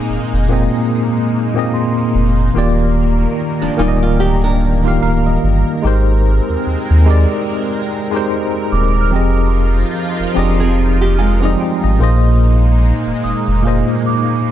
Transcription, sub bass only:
0.09 F1
0.33 F1
2.15 F1
2.56 D#1
3.62 D1
3.79 D1
5.02 D1
5.43 G1
5.84 G#1
6.50 D#2
6.67 D#2
6.90 D#2
8.72 D#1
9.13 F1
10.19 F1
10.37 F1
11.84 G#1
12.01 A#1
13.07 F1
13.24 F1
13.48 F1

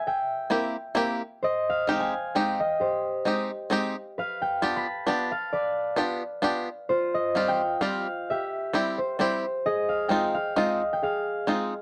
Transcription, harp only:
Already playing: A#4 G#5
0.07 E5 G5
1.43 C5 D#5
1.70 F5
1.89 G5
2.00 G#5
2.35 G5
2.60 D#5
2.80 G4 C5
4.18 B4 F5
4.42 G5
4.63 A5
4.76 B5
5.08 A5
5.32 F5
5.53 B4 D5
6.89 F4 C5
7.14 D#5
7.35 F5
7.48 G5
7.81 F5
8.30 G4 E5
8.98 C5
9.21 C5
9.66 G#4 D#5
9.89 F5
10.08 G5
10.34 F5
10.56 D#5
10.93 G5
11.03 G#4 F5

